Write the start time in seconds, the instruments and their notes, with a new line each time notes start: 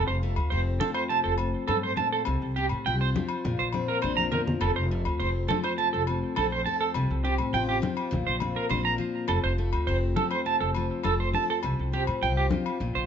Already playing: steel-string acoustic guitar F2 F3 C4 F4
0.08 upright bass F1, clean electric guitar C5
0.22 steel-string acoustic guitar A3, muted conga
0.36 upright bass D2, low agogo
0.50 upright bass F1, steel-string acoustic guitar C4, clean electric guitar C5
0.80 steel-string acoustic guitar F3, clean electric guitar A4, muted conga, high conga
0.94 clean electric guitar C5, low agogo
1.09 steel-string acoustic guitar C3, clean electric guitar A5, muted conga
1.24 upright bass F1, clean electric guitar A4
1.38 muted steel-string acoustic guitar stroke, low agogo
1.68 upright bass G2, steel-string acoustic guitar A2, clean electric guitar A4, high conga, low agogo
1.83 clean electric guitar C5
1.97 steel-string acoustic guitar A#2, clean electric guitar A5, high conga
2.13 clean electric guitar A4
2.25 upright bass C2, steel-string acoustic guitar C3, muted conga, low agogo
2.42 upright bass C2
2.56 steel-string acoustic guitar C4, clean electric guitar G4, muted conga
2.69 upright bass A2, low agogo
2.86 upright bass C2, steel-string acoustic guitar F4, clean electric guitar G5
3.01 clean electric guitar C5
3.16 steel-string acoustic guitar F3, muted conga, high conga
3.29 low agogo
3.45 upright bass A#1, steel-string acoustic guitar A#2, muted conga, low conga
3.59 upright bass A#1, clean electric guitar C5
3.73 steel-string acoustic guitar C4, high conga, low agogo
3.88 clean electric guitar A#4
4.02 upright bass A#1, steel-string acoustic guitar D4, clean electric guitar C5, high conga, low agogo
4.17 clean electric guitar A#5, high conga
4.32 steel-string acoustic guitar F3, clean electric guitar A#4, low conga
4.47 low conga
4.61 upright bass F1, steel-string acoustic guitar F2, clean electric guitar A4, muted conga, low agogo
4.76 upright bass F1, clean electric guitar C5
4.91 steel-string acoustic guitar A3, muted conga
5.05 upright bass D2, low agogo
5.20 upright bass F1, steel-string acoustic guitar C4, clean electric guitar C5
5.48 steel-string acoustic guitar F3, clean electric guitar A4, muted conga, high conga
5.64 clean electric guitar C5, low agogo
5.78 steel-string acoustic guitar C3, clean electric guitar A5, muted conga
5.93 upright bass F1, clean electric guitar A4
6.07 steel-string acoustic guitar F3, low agogo
6.36 upright bass A#1, steel-string acoustic guitar C4, clean electric guitar A4, high conga, low agogo
6.52 clean electric guitar C5
6.66 steel-string acoustic guitar A4, clean electric guitar A5
6.81 clean electric guitar A4
6.94 upright bass C2, steel-string acoustic guitar C3, muted conga, low agogo
7.10 upright bass C2
7.24 steel-string acoustic guitar C4, clean electric guitar G4, muted conga
7.38 upright bass A2, low agogo
7.53 upright bass A1, steel-string acoustic guitar F4, clean electric guitar G5
7.69 clean electric guitar G4
7.82 steel-string acoustic guitar F3, muted conga, high conga
7.97 low agogo
8.11 upright bass A#1, steel-string acoustic guitar A#2, muted conga, low conga
8.27 upright bass A#1, clean electric guitar C5
8.40 steel-string acoustic guitar C4, high conga, low agogo
8.56 clean electric guitar A#4
8.70 upright bass A#1, steel-string acoustic guitar D4, clean electric guitar C5, high conga, low agogo
8.85 clean electric guitar A#5
8.98 steel-string acoustic guitar F3
9.28 upright bass F1, steel-string acoustic guitar F2, clean electric guitar A4, muted conga, low agogo
9.44 upright bass F1, clean electric guitar C5
9.58 steel-string acoustic guitar A3, muted conga
9.73 upright bass D2, low agogo
9.87 upright bass F1, steel-string acoustic guitar C4, clean electric guitar C5
10.16 steel-string acoustic guitar F3, clean electric guitar A4, muted conga, high conga
10.31 clean electric guitar C5, low agogo
10.46 steel-string acoustic guitar C3, clean electric guitar A5, muted conga
10.60 upright bass F1, clean electric guitar A4
10.75 steel-string acoustic guitar F3, low agogo
11.04 upright bass F1, steel-string acoustic guitar C4, clean electric guitar A4, high conga, low agogo
11.20 clean electric guitar C5
11.34 steel-string acoustic guitar A4, clean electric guitar A5, high conga
11.50 clean electric guitar A4
11.63 upright bass C2, steel-string acoustic guitar C3, muted conga, low agogo
11.79 upright bass C2
11.92 steel-string acoustic guitar C4, clean electric guitar G4, muted conga
12.07 upright bass A2, low agogo
12.22 upright bass C2, steel-string acoustic guitar F4, clean electric guitar G5
12.37 clean electric guitar G4
12.51 steel-string acoustic guitar F3, muted conga, high conga
12.66 low agogo
12.80 upright bass A#1, steel-string acoustic guitar A#2, muted conga
12.95 upright bass A#1, clean electric guitar C5